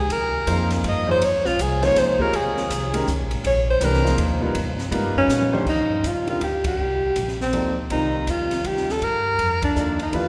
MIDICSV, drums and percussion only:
0, 0, Header, 1, 2, 480
1, 0, Start_track
1, 0, Tempo, 371517
1, 133, Time_signature, 3, 2, 24, 8
1, 13284, End_track
2, 0, Start_track
2, 0, Title_t, "Drums"
2, 130, Note_on_c, 9, 51, 67
2, 259, Note_off_c, 9, 51, 0
2, 609, Note_on_c, 9, 44, 52
2, 609, Note_on_c, 9, 51, 74
2, 738, Note_off_c, 9, 44, 0
2, 738, Note_off_c, 9, 51, 0
2, 911, Note_on_c, 9, 51, 50
2, 912, Note_on_c, 9, 38, 40
2, 1040, Note_off_c, 9, 51, 0
2, 1041, Note_off_c, 9, 38, 0
2, 1086, Note_on_c, 9, 51, 66
2, 1215, Note_off_c, 9, 51, 0
2, 1571, Note_on_c, 9, 51, 76
2, 1700, Note_off_c, 9, 51, 0
2, 1878, Note_on_c, 9, 38, 38
2, 2007, Note_off_c, 9, 38, 0
2, 2057, Note_on_c, 9, 44, 60
2, 2057, Note_on_c, 9, 51, 73
2, 2186, Note_off_c, 9, 44, 0
2, 2186, Note_off_c, 9, 51, 0
2, 2359, Note_on_c, 9, 51, 47
2, 2360, Note_on_c, 9, 38, 38
2, 2488, Note_off_c, 9, 51, 0
2, 2489, Note_off_c, 9, 38, 0
2, 2535, Note_on_c, 9, 51, 63
2, 2536, Note_on_c, 9, 38, 39
2, 2664, Note_off_c, 9, 51, 0
2, 2665, Note_off_c, 9, 38, 0
2, 2834, Note_on_c, 9, 36, 61
2, 2963, Note_off_c, 9, 36, 0
2, 3015, Note_on_c, 9, 51, 65
2, 3144, Note_off_c, 9, 51, 0
2, 3320, Note_on_c, 9, 38, 37
2, 3450, Note_off_c, 9, 38, 0
2, 3494, Note_on_c, 9, 44, 66
2, 3494, Note_on_c, 9, 51, 73
2, 3624, Note_off_c, 9, 44, 0
2, 3624, Note_off_c, 9, 51, 0
2, 3796, Note_on_c, 9, 51, 73
2, 3925, Note_off_c, 9, 51, 0
2, 3973, Note_on_c, 9, 44, 52
2, 4102, Note_off_c, 9, 44, 0
2, 4274, Note_on_c, 9, 51, 52
2, 4403, Note_off_c, 9, 51, 0
2, 4450, Note_on_c, 9, 51, 65
2, 4579, Note_off_c, 9, 51, 0
2, 4922, Note_on_c, 9, 44, 68
2, 4922, Note_on_c, 9, 51, 77
2, 5052, Note_off_c, 9, 44, 0
2, 5052, Note_off_c, 9, 51, 0
2, 5085, Note_on_c, 9, 38, 33
2, 5214, Note_off_c, 9, 38, 0
2, 5243, Note_on_c, 9, 38, 50
2, 5372, Note_off_c, 9, 38, 0
2, 5401, Note_on_c, 9, 51, 73
2, 5531, Note_off_c, 9, 51, 0
2, 5876, Note_on_c, 9, 51, 74
2, 6005, Note_off_c, 9, 51, 0
2, 6183, Note_on_c, 9, 38, 40
2, 6312, Note_off_c, 9, 38, 0
2, 6359, Note_on_c, 9, 51, 71
2, 6488, Note_off_c, 9, 51, 0
2, 6840, Note_on_c, 9, 44, 67
2, 6841, Note_on_c, 9, 38, 51
2, 6969, Note_off_c, 9, 44, 0
2, 6971, Note_off_c, 9, 38, 0
2, 6997, Note_on_c, 9, 48, 72
2, 7126, Note_off_c, 9, 48, 0
2, 7164, Note_on_c, 9, 48, 90
2, 7293, Note_off_c, 9, 48, 0
2, 7318, Note_on_c, 9, 49, 65
2, 7319, Note_on_c, 9, 36, 70
2, 7448, Note_off_c, 9, 36, 0
2, 7448, Note_off_c, 9, 49, 0
2, 7804, Note_on_c, 9, 44, 51
2, 7804, Note_on_c, 9, 51, 60
2, 7933, Note_off_c, 9, 44, 0
2, 7933, Note_off_c, 9, 51, 0
2, 8106, Note_on_c, 9, 51, 41
2, 8235, Note_off_c, 9, 51, 0
2, 8283, Note_on_c, 9, 51, 59
2, 8412, Note_off_c, 9, 51, 0
2, 8583, Note_on_c, 9, 51, 70
2, 8585, Note_on_c, 9, 36, 74
2, 8712, Note_off_c, 9, 51, 0
2, 8715, Note_off_c, 9, 36, 0
2, 9247, Note_on_c, 9, 44, 53
2, 9247, Note_on_c, 9, 51, 59
2, 9377, Note_off_c, 9, 44, 0
2, 9377, Note_off_c, 9, 51, 0
2, 9409, Note_on_c, 9, 38, 26
2, 9538, Note_off_c, 9, 38, 0
2, 9572, Note_on_c, 9, 38, 40
2, 9701, Note_off_c, 9, 38, 0
2, 9726, Note_on_c, 9, 51, 55
2, 9855, Note_off_c, 9, 51, 0
2, 10209, Note_on_c, 9, 51, 59
2, 10338, Note_off_c, 9, 51, 0
2, 10688, Note_on_c, 9, 44, 51
2, 10688, Note_on_c, 9, 51, 61
2, 10817, Note_off_c, 9, 44, 0
2, 10817, Note_off_c, 9, 51, 0
2, 10995, Note_on_c, 9, 51, 43
2, 10996, Note_on_c, 9, 38, 35
2, 11124, Note_off_c, 9, 51, 0
2, 11126, Note_off_c, 9, 38, 0
2, 11169, Note_on_c, 9, 51, 54
2, 11298, Note_off_c, 9, 51, 0
2, 11331, Note_on_c, 9, 38, 28
2, 11461, Note_off_c, 9, 38, 0
2, 11490, Note_on_c, 9, 38, 40
2, 11619, Note_off_c, 9, 38, 0
2, 11652, Note_on_c, 9, 51, 53
2, 11781, Note_off_c, 9, 51, 0
2, 12130, Note_on_c, 9, 51, 56
2, 12260, Note_off_c, 9, 51, 0
2, 12433, Note_on_c, 9, 51, 74
2, 12434, Note_on_c, 9, 36, 71
2, 12563, Note_off_c, 9, 36, 0
2, 12563, Note_off_c, 9, 51, 0
2, 12608, Note_on_c, 9, 44, 60
2, 12738, Note_off_c, 9, 44, 0
2, 12912, Note_on_c, 9, 51, 44
2, 13041, Note_off_c, 9, 51, 0
2, 13086, Note_on_c, 9, 51, 53
2, 13215, Note_off_c, 9, 51, 0
2, 13284, End_track
0, 0, End_of_file